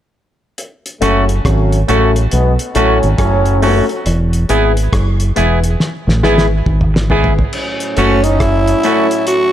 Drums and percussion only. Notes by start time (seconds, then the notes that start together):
0.58 closed hi-hat
0.86 closed hi-hat
1.02 cross-stick, closed hi-hat
1.29 closed hi-hat
1.45 kick, cross-stick, closed hi-hat
1.72 closed hi-hat
1.89 closed hi-hat
2.16 closed hi-hat
2.31 closed hi-hat
2.59 closed hi-hat
2.75 closed hi-hat
3.03 closed hi-hat
3.18 kick, cross-stick, closed hi-hat
3.45 closed hi-hat
3.62 open hi-hat
3.89 closed hi-hat
4.06 closed hi-hat
4.33 closed hi-hat
4.49 closed hi-hat
4.77 closed hi-hat
4.93 kick, cross-stick, closed hi-hat
5.20 closed hi-hat
5.36 closed hi-hat
5.64 closed hi-hat
5.80 snare
6.09 snare
6.24 snare
6.38 snare
6.66 kick
6.81 mid tom
6.96 snare
7.10 floor tom
7.24 floor tom
7.39 floor tom
7.53 crash
7.80 closed hi-hat
7.97 closed hi-hat
8.24 closed hi-hat
8.40 kick, cross-stick, closed hi-hat
8.67 closed hi-hat
8.83 closed hi-hat
9.11 closed hi-hat
9.27 closed hi-hat